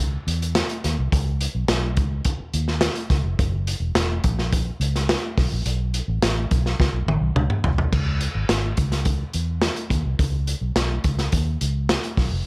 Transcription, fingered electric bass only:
0.00 0.16 C#2 medium
0.27 0.61 E2 medium
0.84 0.95 D#2 medium
0.99 1.10 C2 medium
1.12 1.46 C#2 loud
1.55 1.66 B1 medium
1.68 1.97 B1 medium
1.97 2.19 C#2 medium
2.40 muted fingered electric bass stroke soft
2.54 2.88 D#2 medium
3.10 3.22 C#2 medium
3.23 3.35 F1 loud
3.39 3.73 F#1 loud
3.80 3.92 E1 medium
3.95 4.18 E1 medium
4.24 4.69 A#1 medium
4.80 5.14 C#2 medium
5.37 5.49 B1 medium
5.52 5.63 A#1 medium
5.66 6.00 B1 loud
6.08 6.19 A1 medium
6.22 6.45 A1 loud
6.51 6.73 B1 medium
6.80 6.91 C#2 medium
6.93 7.04 B1 medium
7.06 7.18 A1 medium
7.21 7.33 B1 medium
7.35 7.47 C#2 loud
7.64 7.87 C2 loud
7.92 8.26 C#2 loud
8.35 8.46 G#1 medium
8.49 8.72 G#1 medium
8.77 9.23 C#2 medium
9.34 9.68 E2 medium
9.90 10.02 D#2 loud
10.05 10.17 C2 medium
10.19 10.53 C#2 loud
10.61 10.73 B1 medium
10.76 10.99 B1 medium
11.04 11.27 C#2 medium
11.33 11.55 D#2 medium
11.61 11.95 C#2 medium
12.17 12.29 B1 medium
12.32 12.43 F1 medium

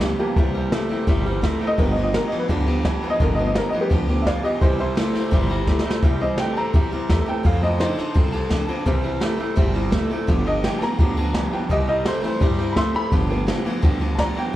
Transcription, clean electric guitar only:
0.02 0.18 G2 medium
0.02 0.18 E3 medium
0.19 0.35 G2 medium
0.19 0.36 E3 medium
0.37 0.53 C3 medium
0.37 0.53 G3 medium
0.54 0.70 C3 medium
0.54 0.70 G3 medium
0.73 0.88 C3 medium
0.73 0.89 A3 loud
0.90 1.06 C3 medium
0.90 1.06 A3 medium
1.08 1.24 C3 medium
1.08 1.24 G3 medium
1.26 1.42 C3 medium
1.26 1.42 G3 medium
1.43 1.59 C3 medium
1.43 1.60 A3 medium
1.61 1.77 C3 medium
1.61 1.77 A3 medium
1.78 1.94 G2 medium
1.78 1.95 D3 medium
1.96 2.12 G2 medium
1.96 2.12 D3 medium
2.14 2.30 G2 medium
2.14 2.30 E3 medium
2.31 2.47 G2 medium
2.31 2.48 E3 loud
2.50 2.65 G2 medium
2.50 2.66 D3 medium
2.67 2.83 G2 medium
2.67 2.83 D3 medium
2.85 3.01 G2 medium
2.85 3.01 E3 medium
3.02 3.18 G2 medium
3.02 3.19 E3 medium
3.20 3.36 G2 medium
3.20 3.36 D3 loud
3.38 3.54 G2 medium
3.38 3.54 D3 medium
3.56 3.72 G2 loud
3.56 3.72 E3 medium
3.74 3.90 G2 medium
3.74 3.90 E3 medium
3.92 4.07 G2 medium
3.92 4.08 D3 medium
4.09 4.25 G2 medium
4.09 4.25 D3 medium
4.27 4.43 G2 medium
4.27 4.43 E3 medium
4.44 4.60 G2 medium
4.44 4.60 E3 loud
4.62 4.78 C3 medium
4.62 4.78 G3 loud
4.81 4.96 C3 medium
4.81 4.96 G3 medium
4.98 5.13 C3 medium
4.98 5.14 A3 loud
5.15 5.31 C3 medium
5.15 5.31 A3 medium
5.33 5.49 C3 medium
5.33 5.49 G3 medium
5.51 5.66 C3 medium
5.51 5.66 G3 medium
5.68 5.84 C3 medium
5.68 5.84 A3 medium
5.86 6.01 C3 medium
5.86 6.02 A3 medium
6.03 6.19 C3 medium
6.03 6.19 G3 medium
6.22 6.37 C3 medium
6.22 6.38 G3 medium
6.40 6.55 C3 medium
6.40 6.55 A3 loud
6.57 6.73 C3 medium
6.57 6.73 A3 medium
6.75 6.91 C3 medium
6.75 6.91 G3 medium
6.92 7.08 C3 medium
6.92 7.08 G3 medium
7.10 7.25 C3 medium
7.10 7.26 A3 loud
7.28 7.43 C3 medium
7.28 7.44 A3 medium
7.45 7.61 F2 medium
7.45 7.61 C3 medium
7.64 7.79 F2 medium
7.64 7.79 C3 medium
7.80 7.96 F2 loud
7.80 7.96 D3 loud
7.99 8.14 F2 medium
7.99 8.14 D3 medium
8.16 8.32 F2 medium
8.16 8.32 C3 loud
8.34 8.50 F2 medium
8.34 8.50 C3 medium
8.52 8.67 F2 medium
8.52 8.68 D3 medium
8.69 8.85 F2 medium
8.69 8.85 D3 loud
8.86 9.02 C3 medium
8.86 9.03 G3 medium
9.04 9.20 C3 medium
9.04 9.21 G3 medium
9.22 9.38 C3 medium
9.22 9.38 A3 loud
9.40 9.56 C3 medium
9.40 9.56 A3 medium
9.57 9.73 C3 medium
9.57 9.74 G3 medium
9.76 9.92 C3 medium
9.76 9.92 G3 medium
9.94 10.10 C3 medium
9.94 10.10 A3 loud
10.12 10.27 C3 medium
10.12 10.28 A3 medium
10.30 10.45 G2 medium
10.30 10.45 D3 medium
10.47 10.63 G2 medium
10.47 10.63 D3 medium
10.65 10.80 G2 medium
10.65 10.81 E3 loud
10.82 10.98 G2 medium
10.82 10.98 E3 medium
11.00 11.16 G2 medium
11.00 11.16 D3 medium
11.18 11.34 G2 medium
11.18 11.34 D3 medium
11.36 11.51 G2 medium
11.36 11.51 E3 medium
11.53 11.69 G2 medium
11.53 11.69 E3 loud
11.70 11.86 C3 medium
11.70 11.87 G3 loud
11.88 12.04 C3 medium
11.88 12.04 G3 medium
12.06 12.22 C3 loud
12.06 12.22 A3 loud
12.23 12.39 C3 medium
12.23 12.40 A3 medium
12.41 12.57 C3 medium
12.41 12.58 G3 medium
12.59 12.75 C3 medium
12.59 12.75 G3 medium
12.77 12.93 C3 medium
12.77 12.93 A3 medium
12.95 13.11 C3 medium
12.95 13.11 A3 medium
13.12 13.28 G2 medium
13.12 13.29 D3 loud
13.30 13.46 G2 medium
13.30 13.46 D3 loud
13.47 13.64 G2 loud
13.47 13.64 E3 loud
13.65 13.81 G2 medium
13.65 13.82 E3 medium
13.84 13.99 G2 medium
13.84 14.00 D3 medium
14.00 14.17 G2 medium
14.00 14.17 D3 medium
14.18 14.35 G2 medium
14.18 14.35 E3 medium
14.37 14.53 G2 medium
14.37 14.53 E3 medium

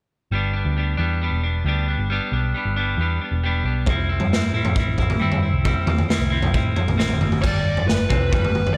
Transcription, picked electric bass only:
0.31 0.62 G1 medium
0.65 0.95 D2 medium
0.99 1.29 E2 medium
1.31 1.62 E1 medium
1.65 1.95 D2 medium
1.98 2.19 G1 medium
2.32 2.52 B1 medium
2.65 2.95 G1 medium
2.97 3.18 E2 medium
3.31 3.62 E1 medium
3.64 3.87 B1 medium
3.87 4.17 C2 medium
4.21 4.51 G2 medium
4.53 4.84 A2 medium
4.87 5.17 A1 medium
5.20 5.51 G2 medium
5.53 5.73 C2 medium
5.86 6.07 E2 medium
6.19 6.50 C2 medium
6.54 6.74 A2 medium
6.86 6.96 A1 medium
6.97 7.18 A1 medium
7.19 7.40 G1 medium
7.43 7.64 G1 medium
7.65 7.86 G1 medium
7.87 8.08 G1 medium
8.10 8.30 C2 medium
8.32 8.77 G1 medium

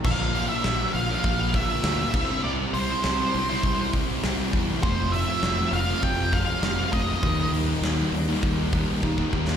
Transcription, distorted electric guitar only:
0.04 0.64 A#2 loud
0.04 0.33 D3 medium
0.04 0.34 F3 loud
0.04 0.35 A#3 loud
0.04 0.37 F4 loud
0.35 0.65 D3 medium
0.35 0.52 F3 medium
0.35 0.51 A#3 medium
0.35 0.49 F4 loud
0.50 0.65 F3 medium
0.50 0.66 A#3 medium
0.50 0.67 F4 medium
0.65 1.10 A#2 loud
0.65 0.94 D3 loud
0.65 0.82 F3 loud
0.65 0.81 A#3 loud
0.65 0.79 F4 loud
0.80 0.95 F3 medium
0.80 0.95 A#3 medium
0.80 0.95 F4 medium
0.95 muted distorted electric guitar stroke soft
1.09 1.55 F3 medium
1.09 1.56 A#3 medium
1.09 1.57 F4 medium
1.55 1.84 D3 medium
1.55 1.86 F3 medium
1.55 1.86 A#3 medium
1.55 1.87 F4 medium
1.85 2.13 A#2 medium
1.85 2.13 D3 loud
1.85 2.01 F3 medium
1.85 1.99 A#3 loud
1.85 1.98 F4 loud
1.99 2.14 F3 medium
1.99 2.13 A#3 medium
1.99 2.12 F4 medium
2.15 2.44 C3 medium
2.15 2.33 G3 loud
2.15 2.31 C4 loud
2.15 2.28 E4 loud
2.30 2.46 G3 medium
2.30 2.47 C4 medium
2.30 2.47 E4 medium
2.45 2.73 C3 loud
2.45 2.76 G3 loud
2.45 2.77 C4 loud
2.45 2.77 E4 loud
2.75 3.03 C3 medium
2.75 2.92 G3 medium
2.75 2.90 C4 medium
2.75 2.88 E4 loud
2.89 3.05 G3 medium
2.89 3.06 C4 medium
2.89 3.07 E4 medium
3.04 3.34 C3 loud
3.04 3.22 G3 loud
3.04 3.21 C4 loud
3.04 3.18 E4 loud
3.20 3.36 G3 medium
3.20 3.36 C4 medium
3.20 3.35 E4 medium
3.36 muted distorted electric guitar stroke soft
3.49 3.95 G3 medium
3.49 3.95 C4 medium
3.49 3.96 E4 medium
3.94 4.22 C3 medium
3.94 4.24 G3 medium
3.94 4.24 C4 medium
3.94 4.25 E4 loud
4.23 4.51 C3 medium
4.23 4.41 G3 loud
4.23 4.39 C4 loud
4.23 4.37 E4 loud
4.39 4.53 G3 medium
4.39 4.54 C4 medium
4.39 4.54 E4 medium
4.53 4.81 C3 medium
4.53 4.71 G3 medium
4.53 4.69 C4 medium
4.53 4.67 E4 medium
4.69 4.84 G3 medium
4.69 4.82 C4 medium
4.69 4.81 E4 medium
4.83 5.12 F3 loud
4.83 5.13 A3 loud
4.83 5.14 C4 loud
4.83 5.16 F4 loud
5.13 5.43 F3 medium
5.13 5.31 A3 medium
5.13 5.29 C4 medium
5.13 5.28 F4 medium
5.29 5.43 A3 medium
5.29 5.44 C4 medium
5.29 5.46 F4 medium
5.43 5.73 F3 loud
5.43 5.61 A3 loud
5.43 5.59 C4 loud
5.43 5.58 F4 loud
5.59 5.73 A3 medium
5.59 5.73 C4 medium
5.59 5.74 F4 medium
5.74 muted distorted electric guitar stroke medium
5.87 6.32 A3 medium
5.87 6.33 C4 medium
5.87 6.34 F4 medium
6.32 6.62 F3 medium
6.32 6.62 A3 medium
6.32 6.62 C4 medium
6.32 6.65 F4 medium
6.62 6.91 F3 medium
6.62 6.79 A3 loud
6.62 6.78 C4 loud
6.62 6.77 F4 loud
6.77 6.92 A3 medium
6.77 6.93 C4 medium
6.77 6.94 F4 medium
6.92 7.21 F3 medium
6.92 7.09 A3 medium
6.92 7.07 C4 medium
6.92 7.06 F4 loud
7.07 7.22 A3 medium
7.07 7.21 C4 medium
7.07 7.24 F4 medium
7.21 7.50 D#3 medium
7.21 7.51 G3 loud
7.21 7.53 A#3 loud
7.21 7.54 D#4 loud
7.51 7.81 D#3 medium
7.51 7.68 G3 medium
7.51 7.68 A#3 medium
7.51 7.66 D#4 medium
7.67 7.82 G3 medium
7.67 7.84 A#3 medium
7.67 7.84 D#4 medium
7.82 8.13 D#3 loud
7.82 8.00 G3 medium
7.82 7.98 A#3 loud
7.82 7.96 D#4 loud
7.98 8.13 G3 medium
7.98 8.14 A#3 medium
7.98 8.13 D#4 medium
8.14 muted distorted electric guitar stroke soft
8.28 8.73 G3 medium
8.28 8.74 A#3 medium
8.28 8.75 D#4 medium
8.73 9.02 D#3 medium
8.73 9.03 G3 medium
8.73 9.04 A#3 medium
8.73 9.04 D#4 medium
9.03 9.32 D#3 medium
9.03 9.20 G3 loud
9.03 9.19 A#3 loud
9.03 9.17 D#4 loud
9.18 9.33 G3 medium
9.18 9.34 A#3 medium
9.18 9.35 D#4 medium
9.33 9.57 D#3 medium
9.33 9.50 G3 medium
9.33 9.49 A#3 medium
9.33 9.47 D#4 medium
9.48 9.57 G3 medium
9.48 9.57 A#3 medium
9.48 9.57 D#4 medium

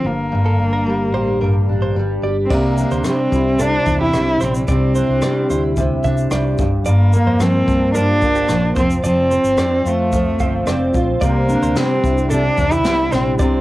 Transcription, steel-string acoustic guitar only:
0.00 2.50 D3 medium
0.00 0.10 F3 medium
0.00 0.10 E4 soft
0.00 0.10 A4 medium
0.05 0.31 G2 medium
0.32 1.40 G2 medium
0.59 1.69 D4 medium
0.86 1.96 G3 medium
1.14 2.23 G4 medium
1.41 2.56 G2 medium
1.69 2.79 D4 soft
1.96 3.05 G3 medium
2.24 5.74 G4 soft
2.50 3.59 C3 medium
2.79 3.87 D4 medium
3.05 4.14 G3 medium
3.33 4.40 E4 medium
3.60 4.68 C3 medium
3.87 4.96 D4 soft
4.14 5.23 G3 medium
4.41 5.49 E4 soft
4.69 5.76 C3 medium
4.96 6.05 D4 medium
5.24 6.32 G3 medium
5.50 6.64 E4 medium
5.78 6.65 C3 medium
6.05 7.13 D4 medium
6.32 7.40 G3 medium
6.59 6.84 G2 medium
6.86 7.93 G2 medium
7.13 8.22 A#3 medium
7.40 8.49 F3 medium
7.67 8.82 D4 medium
7.95 8.82 G2 medium
8.23 8.82 A#3 medium
8.50 8.77 F3 medium
8.77 9.03 F3 medium
9.04 10.12 F3 medium
9.32 9.58 C4 medium
9.58 10.40 C4 medium
9.85 10.93 F4 medium
10.13 11.27 F3 medium
10.40 10.67 C4 medium
10.67 11.49 C4 medium
10.95 11.27 F4 soft
11.22 12.29 C3 medium
11.49 12.58 D4 medium
11.77 12.85 G3 medium
12.04 13.12 E4 medium
12.31 13.38 C3 medium
12.59 13.61 D4 medium
12.85 13.61 G3 medium
13.13 13.61 E4 medium
13.39 13.61 C3 medium

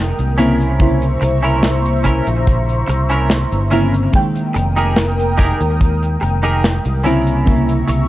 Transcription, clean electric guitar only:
0.38 1.06 C#4 medium
0.38 1.06 E4 medium
0.38 1.07 A#4 loud
1.21 muted clean electric guitar stroke medium
1.43 1.63 C#4 medium
1.43 1.64 E4 medium
1.43 1.64 A#4 medium
2.04 2.27 C#4 medium
2.04 2.27 E4 medium
2.04 2.28 A#4 medium
2.88 muted clean electric guitar stroke medium
3.10 3.30 C#4 medium
3.10 3.30 E4 medium
3.10 3.31 A#4 medium
3.71 3.94 C#4 medium
3.71 3.94 E4 medium
3.71 3.94 A#4 medium
4.54 muted clean electric guitar stroke medium
4.76 4.96 D#4 medium
4.76 4.97 G4 medium
4.76 4.97 G#4 medium
4.76 4.97 A#4 medium
5.38 5.60 D#4 medium
5.38 5.60 G4 medium
5.38 5.61 G#4 medium
5.38 5.61 A#4 medium
6.21 muted clean electric guitar stroke medium
6.43 6.63 D#4 medium
6.43 6.63 G4 medium
6.43 6.64 G#4 medium
6.43 6.64 A#4 medium
7.04 7.72 C#4 medium
7.04 7.73 E4 medium
7.04 7.73 A#4 loud
7.88 muted clean electric guitar stroke medium

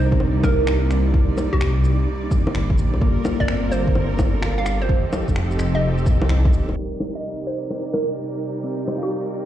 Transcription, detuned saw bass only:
0.00 0.19 C2 loud
0.20 1.13 C2 medium
1.14 1.28 C2 loud
1.53 2.07 C2 loud
2.55 2.80 G1 medium
2.78 3.00 A#1 medium
3.02 3.16 G1 loud
3.40 3.94 G1 loud
3.95 4.88 G1 medium
4.89 5.03 F1 loud
5.28 6.08 F1 loud
6.06 6.55 C2 loud
6.53 6.75 D#1 medium

